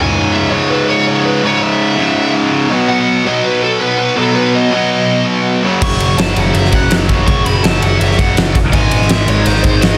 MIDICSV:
0, 0, Header, 1, 5, 480
1, 0, Start_track
1, 0, Key_signature, 4, "minor"
1, 0, Tempo, 365408
1, 1876, Time_signature, 4, 2, 24, 8
1, 13104, End_track
2, 0, Start_track
2, 0, Title_t, "Lead electric guitar"
2, 0, Program_c, 0, 29
2, 0, Note_on_c, 0, 80, 110
2, 422, Note_on_c, 0, 76, 98
2, 448, Note_off_c, 0, 80, 0
2, 661, Note_off_c, 0, 76, 0
2, 661, Note_on_c, 0, 73, 90
2, 920, Note_off_c, 0, 73, 0
2, 920, Note_on_c, 0, 71, 90
2, 1164, Note_off_c, 0, 71, 0
2, 1164, Note_on_c, 0, 73, 94
2, 1389, Note_off_c, 0, 73, 0
2, 1405, Note_on_c, 0, 73, 100
2, 1624, Note_off_c, 0, 73, 0
2, 1643, Note_on_c, 0, 71, 94
2, 1905, Note_off_c, 0, 71, 0
2, 1905, Note_on_c, 0, 73, 97
2, 2131, Note_off_c, 0, 73, 0
2, 2137, Note_on_c, 0, 76, 94
2, 3035, Note_off_c, 0, 76, 0
2, 3792, Note_on_c, 0, 78, 113
2, 4290, Note_off_c, 0, 78, 0
2, 4297, Note_on_c, 0, 75, 102
2, 4519, Note_on_c, 0, 71, 95
2, 4535, Note_off_c, 0, 75, 0
2, 4759, Note_off_c, 0, 71, 0
2, 4764, Note_on_c, 0, 69, 99
2, 4997, Note_off_c, 0, 69, 0
2, 5002, Note_on_c, 0, 71, 98
2, 5216, Note_off_c, 0, 71, 0
2, 5232, Note_on_c, 0, 71, 97
2, 5469, Note_off_c, 0, 71, 0
2, 5474, Note_on_c, 0, 69, 95
2, 5717, Note_off_c, 0, 69, 0
2, 5722, Note_on_c, 0, 71, 91
2, 5968, Note_off_c, 0, 71, 0
2, 5973, Note_on_c, 0, 75, 102
2, 6874, Note_off_c, 0, 75, 0
2, 7658, Note_on_c, 0, 85, 114
2, 8096, Note_off_c, 0, 85, 0
2, 8119, Note_on_c, 0, 81, 90
2, 8355, Note_on_c, 0, 78, 81
2, 8366, Note_off_c, 0, 81, 0
2, 8580, Note_off_c, 0, 78, 0
2, 8592, Note_on_c, 0, 76, 98
2, 8843, Note_off_c, 0, 76, 0
2, 8843, Note_on_c, 0, 78, 76
2, 9081, Note_off_c, 0, 78, 0
2, 9547, Note_on_c, 0, 85, 114
2, 9786, Note_off_c, 0, 85, 0
2, 9786, Note_on_c, 0, 83, 108
2, 10025, Note_off_c, 0, 83, 0
2, 10025, Note_on_c, 0, 81, 99
2, 10263, Note_off_c, 0, 81, 0
2, 10263, Note_on_c, 0, 78, 85
2, 10497, Note_on_c, 0, 76, 91
2, 10510, Note_off_c, 0, 78, 0
2, 10729, Note_off_c, 0, 76, 0
2, 10743, Note_on_c, 0, 78, 81
2, 10972, Note_off_c, 0, 78, 0
2, 11474, Note_on_c, 0, 80, 122
2, 11920, Note_off_c, 0, 80, 0
2, 11965, Note_on_c, 0, 76, 106
2, 12193, Note_off_c, 0, 76, 0
2, 12193, Note_on_c, 0, 73, 86
2, 12427, Note_off_c, 0, 73, 0
2, 12427, Note_on_c, 0, 72, 104
2, 12634, Note_off_c, 0, 72, 0
2, 12650, Note_on_c, 0, 72, 96
2, 12885, Note_off_c, 0, 72, 0
2, 12885, Note_on_c, 0, 75, 100
2, 13104, Note_off_c, 0, 75, 0
2, 13104, End_track
3, 0, Start_track
3, 0, Title_t, "Distorted electric guitar"
3, 0, Program_c, 1, 30
3, 0, Note_on_c, 1, 37, 91
3, 0, Note_on_c, 1, 44, 92
3, 0, Note_on_c, 1, 49, 101
3, 654, Note_off_c, 1, 44, 0
3, 666, Note_off_c, 1, 49, 0
3, 671, Note_on_c, 1, 49, 93
3, 684, Note_on_c, 1, 44, 83
3, 693, Note_off_c, 1, 37, 0
3, 698, Note_on_c, 1, 37, 73
3, 1856, Note_off_c, 1, 37, 0
3, 1860, Note_off_c, 1, 49, 0
3, 1866, Note_off_c, 1, 44, 0
3, 1872, Note_on_c, 1, 37, 82
3, 1884, Note_on_c, 1, 44, 93
3, 1900, Note_on_c, 1, 49, 104
3, 2559, Note_off_c, 1, 49, 0
3, 2575, Note_on_c, 1, 49, 84
3, 2580, Note_off_c, 1, 37, 0
3, 2582, Note_off_c, 1, 44, 0
3, 2598, Note_on_c, 1, 44, 85
3, 2613, Note_on_c, 1, 37, 85
3, 3532, Note_off_c, 1, 49, 0
3, 3540, Note_off_c, 1, 37, 0
3, 3544, Note_off_c, 1, 44, 0
3, 3545, Note_on_c, 1, 47, 98
3, 3563, Note_on_c, 1, 54, 95
3, 3584, Note_on_c, 1, 59, 105
3, 4257, Note_off_c, 1, 47, 0
3, 4262, Note_on_c, 1, 47, 94
3, 4274, Note_off_c, 1, 54, 0
3, 4279, Note_on_c, 1, 54, 89
3, 4295, Note_off_c, 1, 59, 0
3, 4300, Note_on_c, 1, 59, 105
3, 5454, Note_off_c, 1, 47, 0
3, 5469, Note_on_c, 1, 47, 94
3, 5475, Note_off_c, 1, 59, 0
3, 5476, Note_off_c, 1, 54, 0
3, 5481, Note_on_c, 1, 54, 102
3, 5500, Note_on_c, 1, 59, 99
3, 6173, Note_off_c, 1, 47, 0
3, 6188, Note_on_c, 1, 47, 82
3, 6195, Note_off_c, 1, 59, 0
3, 6202, Note_off_c, 1, 54, 0
3, 6207, Note_on_c, 1, 54, 90
3, 6224, Note_on_c, 1, 59, 103
3, 7379, Note_off_c, 1, 47, 0
3, 7397, Note_off_c, 1, 59, 0
3, 7400, Note_on_c, 1, 42, 87
3, 7416, Note_off_c, 1, 54, 0
3, 7421, Note_on_c, 1, 49, 90
3, 7436, Note_on_c, 1, 54, 93
3, 8106, Note_off_c, 1, 42, 0
3, 8111, Note_on_c, 1, 42, 78
3, 8112, Note_off_c, 1, 49, 0
3, 8128, Note_on_c, 1, 49, 91
3, 8140, Note_off_c, 1, 54, 0
3, 8145, Note_on_c, 1, 54, 99
3, 9286, Note_off_c, 1, 42, 0
3, 9301, Note_off_c, 1, 49, 0
3, 9302, Note_on_c, 1, 42, 93
3, 9317, Note_off_c, 1, 54, 0
3, 9317, Note_on_c, 1, 49, 97
3, 9334, Note_on_c, 1, 54, 98
3, 10015, Note_off_c, 1, 42, 0
3, 10023, Note_off_c, 1, 49, 0
3, 10031, Note_off_c, 1, 54, 0
3, 10031, Note_on_c, 1, 42, 85
3, 10046, Note_on_c, 1, 49, 92
3, 10061, Note_on_c, 1, 54, 94
3, 11219, Note_off_c, 1, 42, 0
3, 11226, Note_off_c, 1, 49, 0
3, 11234, Note_off_c, 1, 54, 0
3, 11454, Note_on_c, 1, 44, 87
3, 11472, Note_on_c, 1, 51, 91
3, 11490, Note_on_c, 1, 56, 111
3, 12177, Note_off_c, 1, 56, 0
3, 12179, Note_off_c, 1, 51, 0
3, 12182, Note_on_c, 1, 56, 93
3, 12200, Note_on_c, 1, 51, 85
3, 12212, Note_off_c, 1, 44, 0
3, 12218, Note_on_c, 1, 44, 79
3, 13104, Note_off_c, 1, 44, 0
3, 13104, Note_off_c, 1, 51, 0
3, 13104, Note_off_c, 1, 56, 0
3, 13104, End_track
4, 0, Start_track
4, 0, Title_t, "Picked electric bass"
4, 0, Program_c, 2, 34
4, 7644, Note_on_c, 2, 30, 94
4, 7863, Note_off_c, 2, 30, 0
4, 7880, Note_on_c, 2, 30, 87
4, 8101, Note_off_c, 2, 30, 0
4, 8110, Note_on_c, 2, 30, 95
4, 8336, Note_off_c, 2, 30, 0
4, 8359, Note_on_c, 2, 30, 92
4, 8581, Note_off_c, 2, 30, 0
4, 8597, Note_on_c, 2, 30, 98
4, 8820, Note_off_c, 2, 30, 0
4, 8842, Note_on_c, 2, 30, 100
4, 9062, Note_off_c, 2, 30, 0
4, 9071, Note_on_c, 2, 30, 96
4, 9517, Note_off_c, 2, 30, 0
4, 9562, Note_on_c, 2, 30, 100
4, 9782, Note_off_c, 2, 30, 0
4, 9795, Note_on_c, 2, 30, 90
4, 10018, Note_off_c, 2, 30, 0
4, 10037, Note_on_c, 2, 30, 100
4, 10259, Note_off_c, 2, 30, 0
4, 10272, Note_on_c, 2, 30, 91
4, 10496, Note_off_c, 2, 30, 0
4, 10511, Note_on_c, 2, 30, 103
4, 10735, Note_off_c, 2, 30, 0
4, 10754, Note_on_c, 2, 30, 103
4, 10976, Note_off_c, 2, 30, 0
4, 11006, Note_on_c, 2, 30, 99
4, 11444, Note_off_c, 2, 30, 0
4, 11473, Note_on_c, 2, 32, 96
4, 11696, Note_off_c, 2, 32, 0
4, 11728, Note_on_c, 2, 32, 94
4, 11944, Note_off_c, 2, 32, 0
4, 11965, Note_on_c, 2, 32, 97
4, 12182, Note_off_c, 2, 32, 0
4, 12196, Note_on_c, 2, 32, 92
4, 12417, Note_off_c, 2, 32, 0
4, 12437, Note_on_c, 2, 32, 102
4, 12658, Note_off_c, 2, 32, 0
4, 12668, Note_on_c, 2, 32, 99
4, 12893, Note_off_c, 2, 32, 0
4, 12922, Note_on_c, 2, 32, 96
4, 13104, Note_off_c, 2, 32, 0
4, 13104, End_track
5, 0, Start_track
5, 0, Title_t, "Drums"
5, 7643, Note_on_c, 9, 36, 111
5, 7643, Note_on_c, 9, 49, 107
5, 7774, Note_off_c, 9, 49, 0
5, 7775, Note_off_c, 9, 36, 0
5, 7886, Note_on_c, 9, 51, 89
5, 8017, Note_off_c, 9, 51, 0
5, 8123, Note_on_c, 9, 51, 120
5, 8139, Note_on_c, 9, 38, 127
5, 8254, Note_off_c, 9, 51, 0
5, 8270, Note_off_c, 9, 38, 0
5, 8360, Note_on_c, 9, 51, 80
5, 8491, Note_off_c, 9, 51, 0
5, 8597, Note_on_c, 9, 51, 103
5, 8728, Note_off_c, 9, 51, 0
5, 8734, Note_on_c, 9, 38, 35
5, 8833, Note_on_c, 9, 51, 80
5, 8839, Note_on_c, 9, 36, 91
5, 8865, Note_off_c, 9, 38, 0
5, 8964, Note_off_c, 9, 51, 0
5, 8970, Note_off_c, 9, 36, 0
5, 9072, Note_on_c, 9, 51, 111
5, 9088, Note_on_c, 9, 38, 114
5, 9203, Note_off_c, 9, 51, 0
5, 9219, Note_off_c, 9, 38, 0
5, 9315, Note_on_c, 9, 51, 80
5, 9318, Note_on_c, 9, 36, 91
5, 9447, Note_off_c, 9, 51, 0
5, 9450, Note_off_c, 9, 36, 0
5, 9558, Note_on_c, 9, 36, 121
5, 9559, Note_on_c, 9, 51, 99
5, 9689, Note_off_c, 9, 36, 0
5, 9691, Note_off_c, 9, 51, 0
5, 9800, Note_on_c, 9, 51, 84
5, 9931, Note_off_c, 9, 51, 0
5, 10037, Note_on_c, 9, 51, 115
5, 10053, Note_on_c, 9, 38, 127
5, 10168, Note_off_c, 9, 51, 0
5, 10184, Note_off_c, 9, 38, 0
5, 10278, Note_on_c, 9, 51, 80
5, 10409, Note_off_c, 9, 51, 0
5, 10520, Note_on_c, 9, 51, 108
5, 10652, Note_off_c, 9, 51, 0
5, 10656, Note_on_c, 9, 38, 35
5, 10755, Note_on_c, 9, 36, 95
5, 10758, Note_on_c, 9, 51, 85
5, 10787, Note_off_c, 9, 38, 0
5, 10887, Note_off_c, 9, 36, 0
5, 10889, Note_off_c, 9, 51, 0
5, 10996, Note_on_c, 9, 51, 111
5, 11012, Note_on_c, 9, 38, 117
5, 11127, Note_off_c, 9, 51, 0
5, 11143, Note_off_c, 9, 38, 0
5, 11232, Note_on_c, 9, 36, 94
5, 11234, Note_on_c, 9, 51, 85
5, 11364, Note_off_c, 9, 36, 0
5, 11365, Note_off_c, 9, 51, 0
5, 11470, Note_on_c, 9, 51, 119
5, 11471, Note_on_c, 9, 36, 110
5, 11601, Note_off_c, 9, 51, 0
5, 11602, Note_off_c, 9, 36, 0
5, 11708, Note_on_c, 9, 51, 91
5, 11840, Note_off_c, 9, 51, 0
5, 11844, Note_on_c, 9, 38, 34
5, 11945, Note_on_c, 9, 51, 126
5, 11960, Note_off_c, 9, 38, 0
5, 11960, Note_on_c, 9, 38, 122
5, 12076, Note_off_c, 9, 51, 0
5, 12092, Note_off_c, 9, 38, 0
5, 12188, Note_on_c, 9, 51, 90
5, 12320, Note_off_c, 9, 51, 0
5, 12422, Note_on_c, 9, 51, 117
5, 12553, Note_off_c, 9, 51, 0
5, 12560, Note_on_c, 9, 38, 35
5, 12660, Note_on_c, 9, 51, 88
5, 12667, Note_on_c, 9, 36, 100
5, 12691, Note_off_c, 9, 38, 0
5, 12792, Note_off_c, 9, 51, 0
5, 12799, Note_off_c, 9, 36, 0
5, 12900, Note_on_c, 9, 51, 110
5, 12916, Note_on_c, 9, 38, 120
5, 13032, Note_off_c, 9, 51, 0
5, 13048, Note_off_c, 9, 38, 0
5, 13104, End_track
0, 0, End_of_file